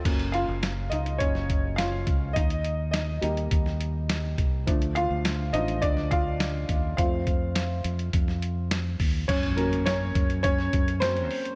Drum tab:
CC |x---------------|----------------|----------------|----------------|
HH |xxx-x-xxx-x-x-x-|xxx-x-xxx-x-x-x-|xxx-x-xxx-x-x-x-|x-x-x-xxx-x-x-o-|
SD |----o----o--o---|----o----o--o---|----o----o--o---|----o----o--o---|
BD |o-------o-o---o-|o-------o-----o-|o-------o-o---o-|o-o-----o-----o-|

CC |x---------------|
HH |xxxxx-xxx-xxxxox|
SD |----o----o--o---|
BD |o-----o-o-o-----|